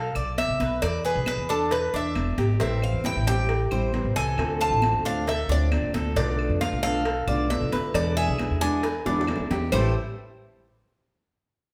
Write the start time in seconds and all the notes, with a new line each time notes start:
Already playing: B1 A4 F5
0.15 B1 D5, high conga, claves
0.38 E5, cowbell, high conga
0.49 B1
0.60 B1 B4, cowbell, high conga
0.82 E2 D5, cowbell, high conga, claves
1.05 G#4 B4, high conga
1.15 B1
1.26 B4, cowbell, high conga, claves
1.37 E2
1.49 D4 A4, high conga
1.71 B4, cowbell, high conga
1.93 E2 D4 E5, high conga
2.15 E1, cowbell, high conga, claves
2.38 G#1 G4, cowbell, high conga
2.60 A1 E3 G3 C4 E4 E5, cowbell
2.82 F5, high conga, claves
2.93 E2
3.04 E3 G3 C4 E4 G5, cowbell, high conga
3.15 A1
3.27 G3 C4 E4 G4 G5, cowbell
3.49 muted steel-string acoustic guitar stroke, cowbell, high conga
3.71 A1 G3 C4 E4 C5, high conga, claves
3.93 E3 G3 C4 E4, cowbell, high conga
4.04 A1
4.15 C2 A4 G#5, cowbell
4.37 D2 D3 A3 C4 F4, cowbell, high conga, claves
4.60 F4 A5, high conga
4.70 A1
4.82 D3 A3 C4 F4, cowbell, high conga, claves
4.93 D2
5.05 A3 C4 D4 F4 F5, high conga
5.27 A4 E5, muted steel-string acoustic guitar stroke, cowbell, high conga
5.48 D2 A3 C4 D4 F4 D5, high conga
5.72 D3 A3 C4 F4, cowbell, high conga, claves
5.82 D2
5.93 D2 A4, cowbell, high conga
6.16 B1 B2 D3 A3 B3 D4 F4 D5, cowbell
6.39 high conga, claves
6.49 F2
6.61 D3 A3 B3 F4 F5, cowbell, high conga
6.72 B1
6.83 D3 A3 B3 F4 A4 F5, cowbell, high conga
7.05 muted steel-string acoustic guitar stroke, cowbell, high conga
7.27 B1 D3 A3 B3 F4 D5, high conga, claves
7.49 D3 A3 B3 F4 E5, cowbell, high conga
7.61 B1
7.72 D2 B4, cowbell, high conga
7.94 E2 B2 D3 G#3 B3 E4 D5, cowbell, high conga, claves
8.17 G#4 E5, high conga
8.28 B1
8.39 D3 G#3 B3 E4, cowbell, high conga, claves
8.51 E2
8.61 D3 G#3 B3 D4 E4 G#5, high conga
8.83 B4, muted steel-string acoustic guitar stroke, cowbell, high conga
9.05 E2 D3 G#3 B3 D4 E4, high bongo, high conga
9.21 high bongo
9.27 D3 G#3 B3 E4, cowbell, high conga, claves
9.36 E2, low bongo
9.50 E2 G4, cowbell, low bongo, high conga
9.72 A1 A2 E3 G3 A3 C4 E4 G4 C5, low bongo, low conga, claves